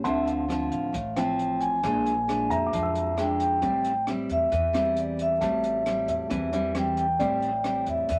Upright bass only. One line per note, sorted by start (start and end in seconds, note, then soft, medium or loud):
0.05 0.68 D2 medium
0.72 0.92 A1 medium
0.94 1.80 A1 medium
1.83 2.46 A#1 loud
2.50 2.71 F2 medium
2.73 3.58 F2 medium
3.62 4.25 A1 medium
4.30 4.50 E2 medium
4.52 5.37 E2 medium
5.42 6.04 A1 medium
6.07 6.28 E2 medium
6.31 7.16 E2 medium
7.20 7.83 A1 medium
7.87 8.08 E2 medium
8.09 8.19 E2 medium